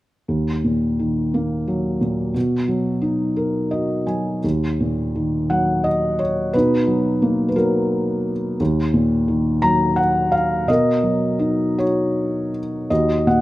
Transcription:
0.28 2.31 D#2 soft
0.64 1.98 A#2 soft
0.99 2.31 D#3 soft
1.34 2.32 A#3 soft
1.68 2.33 F#3 soft
2.01 2.34 A#2 soft
2.34 4.39 B2 soft
2.68 4.03 F#3 soft
3.02 4.39 D#4 soft
3.36 4.40 A#4 soft
3.71 4.41 F#4 soft
3.71 4.04 D#5 soft
4.07 4.42 F#3 soft
4.07 4.41 G#5 soft
4.44 6.49 D#2 soft
4.80 6.15 A#2 soft
5.15 6.49 D#3 soft
5.50 6.50 F#3 soft
5.50 5.86 F#5 medium
5.84 6.20 D#5 medium
6.19 6.54 C#5 medium
6.53 8.56 B2 soft
6.53 7.53 D#4 soft
6.53 7.47 B4 medium
6.87 7.55 F#3 soft
7.22 8.56 A#3 soft
7.49 7.56 B4 soft
7.56 8.57 F#3 soft
7.56 8.30 A#4 soft
8.60 10.64 D#2 medium
8.94 10.29 A#2 soft
9.28 10.64 D#3 soft
9.62 10.65 F#3 soft
9.62 9.98 A#5 medium
9.96 10.33 F#5 medium
10.32 10.69 F5 medium
10.67 12.86 B2 soft
10.67 11.75 A#4 soft
10.67 11.81 D#5 medium
11.03 12.49 F#3 soft
11.39 12.86 D#4 soft
11.78 12.87 F#4 soft
11.78 12.59 C#5 medium
12.90 13.41 D#2 soft
12.90 13.41 F#4 soft
12.90 13.28 D#5 medium
13.27 13.41 A#2 soft
13.27 13.41 F#5 medium

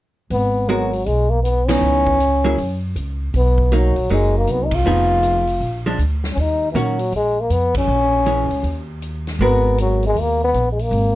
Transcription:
0.30 1.02 G#1 medium
0.30 0.71 B3 medium
0.30 open hi-hat soft
0.69 1.08 F#3 medium
0.69 0.90 G#3 soft
0.69 0.91 B3 soft
0.69 0.91 F#4 soft
0.69 0.91 A#4 soft
0.69 closed hi-hat soft
0.93 open hi-hat soft
1.06 1.78 B1 medium
1.06 1.31 G#3 medium
1.06 open hi-hat soft
1.30 1.43 A#3 medium
1.43 1.69 B3 medium
1.43 closed hi-hat soft
1.68 2.17 E3 medium
1.68 2.18 B3 medium
1.68 2.82 C#4 loud
1.68 2.18 D#4 medium
1.68 snare medium
1.68 ride medium
1.81 2.53 C#2 medium
2.07 kick soft
2.20 closed hi-hat soft
2.44 2.56 F#3 medium
2.44 2.56 A#3 medium
2.44 2.57 E4 medium
2.44 2.57 G#4 medium
2.58 2.93 F#2 medium
2.58 open hi-hat soft
2.96 3.31 C#2 medium
2.96 closed hi-hat soft
3.34 3.92 B1 medium
3.34 3.77 B3 medium
3.34 open hi-hat soft
3.58 kick soft
3.72 3.93 F#3 soft
3.72 4.14 F#3 medium
3.72 3.94 A#3 medium
3.72 3.94 D#4 soft
3.72 closed hi-hat soft
3.96 4.08 A#1 medium
3.96 open hi-hat soft
4.09 4.44 F#1 medium
4.09 4.67 F#3 soft
4.09 4.35 G#3 medium
4.09 4.67 A#3 soft
4.09 4.68 D#4 medium
4.09 open hi-hat soft
4.38 4.53 A#3 medium
4.47 4.82 C2 medium
4.47 closed hi-hat soft
4.51 4.67 B3 medium
4.65 4.76 D#4 medium
4.71 5.87 F4 medium
4.71 kick medium
4.71 ride medium
4.85 5.57 F1 medium
4.85 5.43 F3 medium
4.85 5.43 B3 medium
4.85 5.43 D#4 medium
4.85 5.44 G#4 medium
5.23 closed hi-hat soft
5.47 open hi-hat soft
5.60 5.96 A#1 medium
5.60 open hi-hat soft
5.86 5.98 F3 medium
5.86 5.98 G#3 medium
5.86 5.98 D4 medium
5.98 6.34 D2 medium
5.98 closed hi-hat soft
6.24 snare soft
6.34 6.72 D#2 medium
6.34 6.42 C#4 medium
6.34 open hi-hat soft
6.40 6.71 D#4 medium
6.72 7.10 A#2 medium
6.72 6.97 D#3 soft
6.72 6.80 E3 medium
6.72 6.97 A#3 soft
6.72 6.97 C#4 medium
6.72 closed hi-hat soft
6.76 7.15 F#3 medium
6.76 6.97 F#4 medium
6.99 open hi-hat soft
7.12 7.48 A#1 medium
7.12 open hi-hat soft
7.16 7.42 G#3 medium
7.40 7.54 A#3 medium
7.50 7.85 F2 medium
7.50 7.76 B3 medium
7.50 closed hi-hat soft
7.75 8.86 C#4 medium
7.75 kick medium
7.75 ride medium
7.88 8.46 A#1 medium
8.26 8.48 E3 soft
8.26 8.48 G#3 soft
8.26 8.49 C#4 soft
8.26 closed hi-hat soft
8.50 8.62 C#2 medium
8.50 open hi-hat soft
8.63 9.36 D#2 medium
8.63 open hi-hat soft
9.02 closed hi-hat soft
9.27 snare soft
9.27 open hi-hat soft
9.39 10.12 G#1 medium
9.39 10.46 G#3 medium
9.39 10.46 B3 soft
9.39 10.47 F#4 medium
9.39 10.47 A#4 medium
9.39 open hi-hat soft
9.43 9.77 B3 medium
9.78 10.03 F#3 medium
9.78 closed hi-hat soft
10.03 10.22 G#3 medium
10.03 open hi-hat soft
10.15 10.51 D#2 medium
10.15 open hi-hat soft
10.21 10.43 A#3 medium
10.44 10.69 B3 medium
10.53 10.89 A#1 medium
10.53 closed hi-hat soft
10.72 10.84 G#3 medium
10.79 11.15 A#3 medium
10.79 open hi-hat soft
10.91 11.15 G#1 medium
10.91 open hi-hat soft

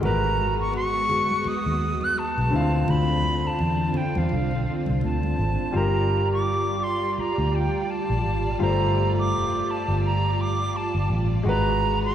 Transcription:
0.00 1.41 G#1 loud
0.00 2.47 G#3 medium
0.00 2.50 G#3 medium
0.00 2.49 B3 medium
0.00 2.48 F#4 medium
0.00 2.50 F#4 medium
0.00 2.49 A#4 medium
0.00 0.55 A#5 medium
0.00 muted conga soft
0.00 low conga medium
0.05 2.50 B4 medium
0.24 muted conga soft
0.37 high conga soft
0.60 0.73 C#6 medium
0.73 1.49 C#6 loud
0.73 muted conga soft
0.94 muted conga soft
1.09 low conga medium
1.31 high conga medium
1.44 2.05 D#6 loud
1.44 muted fingered electric bass stroke soft
1.44 muted conga soft
1.66 1.96 D#2 medium
1.66 muted conga soft
2.01 2.20 F#6 medium
2.01 high conga medium
2.16 2.91 A5 loud
2.16 muted conga soft
2.38 2.50 B1 medium
2.38 high conga medium
2.50 2.82 D2 medium
2.50 5.33 D3 medium
2.50 5.70 D3 medium
2.50 5.34 C4 medium
2.50 5.70 C4 medium
2.50 5.70 D4 medium
2.50 2.60 E4 soft
2.50 5.71 F4 medium
2.56 5.35 F5 medium
2.60 5.38 F4 medium
2.88 3.48 D2 loud
2.88 3.48 B5 loud
2.88 muted conga soft
2.88 low conga medium
3.09 muted conga soft
3.22 high conga soft
3.47 3.98 A5 loud
3.59 3.90 E2 medium
3.59 muted conga soft
3.94 4.19 G5 medium
3.94 low conga medium
4.15 4.29 E2 medium
4.15 4.73 F5 medium
4.15 high conga medium
4.29 4.53 C2 medium
4.29 muted conga soft
4.51 4.65 B1 medium
4.51 muted conga soft
4.86 5.01 C2 medium
4.86 high conga medium
5.01 5.33 D2 medium
5.01 5.78 A5 medium
5.01 muted conga soft
5.23 muted conga soft
5.23 high conga medium
5.39 5.56 G#1 medium
5.72 7.13 G1 loud
5.72 8.54 G3 medium
5.72 11.40 G3 medium
5.72 11.40 F4 medium
5.72 8.55 F4 medium
5.72 8.56 G4 medium
5.72 11.41 D5 medium
5.72 6.31 A#5 medium
5.77 8.57 A#4 medium
6.33 6.84 D6 medium
6.83 7.13 C6 medium
7.13 7.21 C6 medium
7.18 7.56 A#5 medium
7.18 muted fingered electric bass stroke soft
7.38 7.67 D2 medium
7.55 7.92 G5 medium
7.90 8.60 A5 medium
8.10 8.25 A#1 medium
8.25 8.54 G#1 medium
8.59 9.32 G1 loud
8.59 11.40 G3 medium
8.59 11.42 A3 medium
8.59 11.41 F4 medium
8.59 11.42 G4 medium
8.59 9.12 A#5 medium
8.64 11.43 C5 medium
9.19 9.72 D6 loud
9.32 9.61 F1 medium
9.70 10.04 A5 medium
9.88 10.70 G1 medium
10.05 10.42 A#5 medium
10.41 10.78 D6 medium
10.76 11.20 A5 medium
10.95 11.07 G1 medium
11.10 11.39 A1 medium
11.43 12.15 G#1 loud
11.43 12.15 G#3 medium
11.43 12.15 F#4 medium
11.43 12.15 B4 medium
11.48 12.15 B4 medium
11.48 11.99 A#5 loud
12.04 12.15 C#6 loud

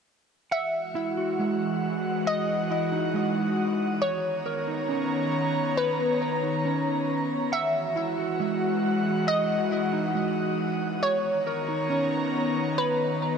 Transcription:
0.51 3.98 E3 medium
0.51 3.98 G#3 medium
0.51 2.25 F#4 medium
0.51 1.79 E5 medium
0.51 3.98 F#5 medium
0.51 1.83 F#5 loud
0.95 2.27 E4 medium
1.17 2.49 F#4 medium
1.39 2.70 G#3 medium
2.26 4.00 F#4 medium
2.26 3.58 D#5 loud
2.26 3.10 D#5 loud
2.71 4.02 E4 medium
2.92 4.02 D#4 medium
3.14 4.02 G#3 medium
4.02 7.49 D#3 medium
4.02 7.49 B3 medium
4.02 5.29 C#5 loud
4.02 7.49 C#5 medium
4.02 5.33 C#5 loud
4.02 7.49 A#5 medium
4.46 5.77 A#4 medium
4.68 5.99 D#4 medium
4.89 6.20 C#4 medium
5.77 6.61 B4 loud
5.77 7.08 C#5 loud
6.21 7.52 A#5 medium
6.43 7.52 D#4 medium
6.65 7.52 C#4 medium
7.52 10.99 E3 medium
7.52 10.99 G#3 medium
7.52 10.99 F#4 medium
7.52 8.80 E5 loud
7.52 10.99 F#5 medium
7.52 8.84 F#5 medium
7.96 9.27 E4 medium
8.18 9.49 F#4 medium
8.40 9.71 G#3 medium
9.27 10.59 D#5 loud
9.27 10.11 D#5 loud
9.71 11.03 E4 medium
9.93 11.03 D#4 medium
10.15 11.02 G#3 medium
11.02 13.38 D#3 medium
11.02 13.38 B3 medium
11.02 12.76 C#5 medium
11.02 12.30 C#5 loud
11.02 12.34 C#5 loud
11.02 13.38 A#5 medium
11.47 12.78 A#4 medium
11.68 13.00 D#4 medium
11.90 13.21 C#4 medium
12.78 13.38 B4 loud
12.78 13.38 C#5 loud
12.78 13.38 D#5 medium
13.22 13.38 A#5 medium

